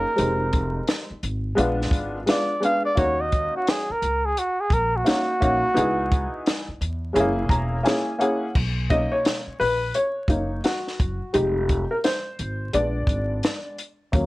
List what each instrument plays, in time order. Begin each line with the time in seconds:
Already playing: muted trumpet A#4
0.16 upright bass F1, upright piano G#3 C4 D#4 G4, closed hi-hat
0.53 kick, closed hi-hat
0.88 snare, closed hi-hat
1.10 muted upright bass stroke
1.23 upright bass G#1, closed hi-hat
1.55 upright bass A#1, upright piano G#3 B3 D4 F4, closed hi-hat
1.82 snare
1.91 upright bass G#1, kick, closed hi-hat
2.26 upright piano G#3 B3 D4 F4, snare, closed hi-hat
2.30 muted trumpet D5
2.60 upright piano G#3 B3 D4 G#4, closed hi-hat
2.65 muted trumpet F5
2.85 muted trumpet D5
2.95 upright bass D#2, upright piano A#3 C#4 D#4 F#4, muted trumpet C#5, kick, closed hi-hat
3.21 muted trumpet D#5
3.32 kick, closed hi-hat
3.56 muted trumpet F#4
3.67 muted trumpet G#4, snare, closed hi-hat
3.90 muted trumpet A#4, muted upright bass stroke
4.02 upright bass C#2, closed hi-hat
4.26 muted trumpet G#4
4.37 muted trumpet F#4, closed hi-hat
4.61 muted trumpet G#4
4.70 upright bass A#1, muted trumpet A#4, kick, closed hi-hat
4.96 muted trumpet F#4
5.04 upright piano A#3 C#4 D#4 F#4, snare, closed hi-hat
5.40 upright bass A#1, upright piano A#3 C#4 D#4 F#4, kick, closed hi-hat
5.74 upright bass C#2, upright piano B3 D#4 E4 G#4, closed hi-hat
6.12 kick, closed hi-hat
6.46 snare, closed hi-hat
6.68 muted upright bass stroke
6.81 upright bass E2, closed hi-hat
7.13 upright bass F#1, upright piano G#3 C#4 E4 G#4, closed hi-hat
7.20 upright piano A#3
7.49 upright bass E1, upright piano A#5, kick, closed hi-hat
7.83 upright piano A#3 C#4 E4 G#4 G#5, closed hi-hat
7.87 snare
8.18 upright piano A#3 C#4 E4 G#4 F#5, closed hi-hat
8.55 upright bass B1, kick, crash
8.90 upright piano A#3 C#4 D#4 D#5, kick, closed hi-hat
9.12 upright piano C#5
9.25 snare, closed hi-hat
9.47 muted upright bass stroke
9.60 upright bass A#1, upright piano B4, open hi-hat
9.94 upright piano C#5, closed hi-hat
10.28 upright bass F#1, upright piano A#3 C#4 D#4, kick, closed hi-hat
10.64 upright piano F#4, snare, closed hi-hat
10.88 snare
11.00 upright bass F#1, kick, closed hi-hat
11.33 upright bass F1, upright piano G3 G#3 D#4 G4, closed hi-hat
11.69 kick, closed hi-hat
11.91 upright piano A#4
12.04 upright piano C5, snare, closed hi-hat
12.39 upright bass G#1, closed hi-hat
12.73 upright bass A#1, upright piano G#3 B3 D4 D5, closed hi-hat
13.07 upright bass G#1, kick, closed hi-hat
13.43 snare, closed hi-hat
13.78 closed hi-hat
14.12 upright bass D#2, upright piano F#3 A#3 C#4, kick, closed hi-hat